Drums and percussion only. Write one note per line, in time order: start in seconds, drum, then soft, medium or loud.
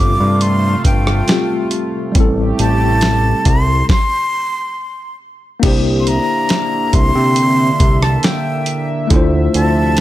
0.41 closed hi-hat medium
0.85 kick medium
0.85 closed hi-hat medium
1.07 cross-stick loud
1.28 snare loud
1.28 closed hi-hat medium
1.71 closed hi-hat medium
2.15 kick loud
2.15 closed hi-hat medium
2.59 closed hi-hat medium
3.01 snare loud
3.01 closed hi-hat medium
3.45 kick loud
3.45 closed hi-hat medium
3.89 kick loud
3.89 snare medium
5.63 kick loud
5.63 closed hi-hat medium
5.63 crash loud
6.07 closed hi-hat medium
6.49 snare loud
6.49 closed hi-hat medium
6.93 kick medium
6.93 closed hi-hat medium
7.36 closed hi-hat medium
7.80 kick loud
7.80 closed hi-hat medium
8.03 cross-stick loud
8.23 snare loud
8.23 closed hi-hat medium
8.66 closed hi-hat medium
9.10 kick loud
9.10 closed hi-hat medium
9.54 closed hi-hat medium
9.97 closed hi-hat medium